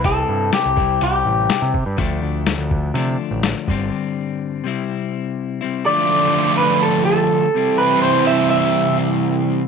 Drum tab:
HH |o-o-o-o-|o-o-o-o-|--------|--------|
SD |--o---o-|--o---o-|--------|--------|
BD |o--o---o|o--o---o|--------|--------|

HH |--------|
SD |--------|
BD |--------|